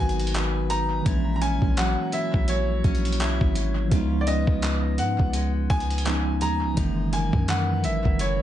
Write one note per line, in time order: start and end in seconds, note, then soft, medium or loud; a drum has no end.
0.00 1.02 G#1 loud
0.00 0.99 D#3 medium
0.00 1.00 D#3 medium
0.00 1.01 F#3 medium
0.00 1.06 G#3 medium
0.00 1.04 B3 medium
0.00 0.69 D#4 medium
0.00 1.06 F#4 medium
0.00 1.03 A#4 medium
0.00 0.33 B4 medium
0.00 0.72 G#5 loud
0.09 closed hi-hat soft
0.20 closed hi-hat medium
0.27 closed hi-hat medium
0.34 1.14 B4 medium
0.34 clap loud
0.34 closed hi-hat medium
0.70 1.14 D#4 medium
0.70 1.34 A#5 loud
0.70 closed hi-hat medium
1.02 1.60 A#1 loud
1.02 3.91 A#2 medium
1.02 3.86 E3 medium
1.02 3.87 G#3 medium
1.02 kick loud
1.02 closed hi-hat medium
1.06 3.88 A#3 medium
1.06 3.89 C#4 medium
1.06 2.12 E4 medium
1.36 1.42 A#5 medium
1.41 2.84 C#4 medium
1.41 1.78 G#5 loud
1.41 closed hi-hat medium
1.62 1.96 A#1 loud
1.62 kick loud
1.77 2.47 F#3 medium
1.77 2.14 F#5 medium
1.77 clap loud
1.77 closed hi-hat medium
2.12 3.19 E4 medium
2.12 2.50 E5 medium
2.12 closed hi-hat medium
2.34 2.82 A#1 loud
2.34 kick medium
2.48 3.54 F#3 medium
2.48 3.52 C#5 medium
2.48 closed hi-hat medium
2.84 3.21 A#1 loud
2.84 4.27 C#4 medium
2.84 kick loud
2.84 closed hi-hat soft
2.95 closed hi-hat soft
3.05 closed hi-hat medium
3.12 closed hi-hat medium
3.20 3.40 B1 loud
3.20 3.91 E4 medium
3.20 clap loud
3.20 closed hi-hat medium
3.41 3.90 G#1 loud
3.41 kick loud
3.55 4.00 F#3 medium
3.55 closed hi-hat medium
3.88 4.46 C#2 loud
3.88 6.04 C#3 medium
3.88 6.00 F3 medium
3.88 6.01 G#3 medium
3.88 kick loud
3.88 closed hi-hat medium
3.92 6.02 B3 medium
3.92 6.04 D#4 medium
3.92 4.99 F4 medium
4.21 4.27 D5 medium
4.27 5.69 B3 medium
4.27 5.01 D#5 medium
4.27 closed hi-hat medium
4.47 5.00 C#2 loud
4.47 kick medium
4.62 5.34 G#3 medium
4.62 clap loud
4.62 closed hi-hat medium
4.98 5.18 G#2 loud
4.98 5.72 F#5 medium
4.98 closed hi-hat medium
5.19 5.68 C#2 loud
5.19 kick loud
5.33 6.41 G#3 medium
5.33 closed hi-hat medium
5.70 6.43 C#2 loud
5.70 6.14 B3 medium
5.70 6.37 G#5 loud
5.70 kick loud
5.70 closed hi-hat soft
5.80 closed hi-hat soft
5.90 closed hi-hat medium
5.98 closed hi-hat medium
6.04 6.85 C#3 medium
6.04 6.76 F3 medium
6.04 6.75 G#3 medium
6.04 6.78 B3 medium
6.04 6.78 D#4 medium
6.04 clap loud
6.04 closed hi-hat medium
6.41 6.63 D#2 loud
6.41 7.16 G#3 medium
6.41 7.15 A#5 loud
6.41 closed hi-hat medium
6.62 6.76 C#2 medium
6.74 7.31 F#1 loud
6.74 8.42 F#2 medium
6.74 8.42 E3 medium
6.74 8.42 G#3 medium
6.74 8.23 D#4 medium
6.74 kick loud
6.74 closed hi-hat medium
6.79 8.42 D#3 medium
6.79 8.42 A#3 medium
7.13 8.42 A#3 medium
7.13 7.50 G#5 loud
7.13 closed hi-hat medium
7.33 7.86 F#2 loud
7.33 kick loud
7.48 8.19 E3 medium
7.48 7.82 F#5 loud
7.48 clap loud
7.48 closed hi-hat medium
7.84 8.04 G#1 medium
7.84 8.21 E5 medium
7.84 closed hi-hat medium
8.05 8.42 F#1 loud
8.05 kick loud
8.19 8.42 E3 medium
8.19 8.42 C#5 medium
8.19 closed hi-hat medium